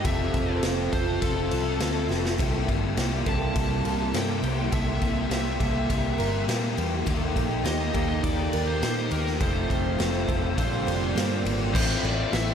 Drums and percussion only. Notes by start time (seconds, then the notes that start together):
0.05 kick, ride
0.34 kick, ride
0.63 snare, ride
0.93 kick, ride
1.22 kick, ride
1.51 ride
1.80 snare, ride
2.11 snare
2.25 snare
2.39 kick, ride
2.68 kick, ride
2.97 snare, ride
3.26 kick, ride
3.56 kick, ride
3.85 ride
4.14 snare, ride
4.44 ride
4.72 kick, ride
5.02 kick, ride
5.31 snare, ride
5.60 kick, ride
5.90 kick, ride
6.20 ride
6.49 snare, ride
6.78 ride
7.07 kick, ride
7.36 kick, ride
7.65 snare, ride
7.94 kick, ride
8.24 kick, ride
8.53 ride
8.83 snare, ride
9.11 ride
9.27 snare
9.41 kick, ride
9.70 kick, ride
10.00 snare, ride
10.29 kick, ride
10.58 kick, ride
10.88 ride
11.17 snare, ride
11.46 ride
11.75 kick, crash
12.05 crash
12.33 snare, crash